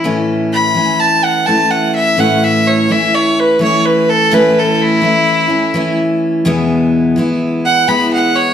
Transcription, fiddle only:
0.53 1.02 B5 loud
1.00 1.26 A5 medium
1.24 1.48 F#5 medium
1.46 1.73 A5 medium
1.71 1.94 F#5 medium
1.96 2.21 E5 medium
2.20 2.46 F#5 medium
2.44 2.69 E5 medium
2.67 2.93 C#5 medium
2.92 3.16 E5 medium
3.15 3.41 C#5 medium
3.40 3.61 B4 medium
3.63 3.87 C#5 medium
3.86 4.11 B4 medium
4.09 4.35 A4 loud
4.34 4.60 B4 loud
4.59 4.83 A4 medium
4.81 5.99 E4 loud
7.65 7.90 F#5 loud
7.89 8.11 B5 medium
8.13 8.37 F#5 medium
8.36 8.54 C#5 loud

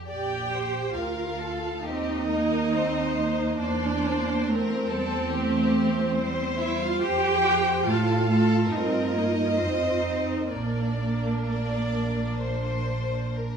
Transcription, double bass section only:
0.08 0.93 A#1 soft
0.97 1.85 D2 medium
1.85 3.60 D#2 medium
3.60 6.98 E2 medium
7.01 7.84 F2 medium
7.85 8.68 A2 medium
8.70 9.55 G2 medium
9.57 10.50 F2 medium
10.50 13.57 A#1 medium

